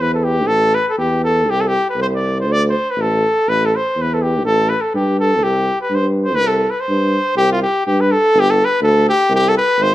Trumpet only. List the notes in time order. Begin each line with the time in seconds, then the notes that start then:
0.01 B4
0.14 A4
0.24 G4
0.47 A4
0.75 B4
0.88 A4 B4
0.98 G4
1.24 A4
1.50 G4
1.61 A4
1.68 G4
1.90 B4
2.02 C5
2.15 D5
2.41 C5
2.52 D5
2.70 C5
2.91 B4
3.01 A4
3.49 B4
3.66 A4
3.76 C5
4.02 B4
4.14 A4
4.22 G4
4.46 A4
4.69 B4
4.81 A4
4.95 G4
5.20 A4
5.43 G4
5.81 B4
5.95 C5
6.25 C5
6.35 B4
6.47 A4
6.70 B4
6.81 C5
7.37 G4
7.52 F4
7.63 G4
7.86 G4
8.01 B4
8.12 A4
8.40 G4
8.50 A4
8.65 B4
8.83 A4
9.09 G4
9.35 G4
9.49 A4
9.57 B4
9.83 C5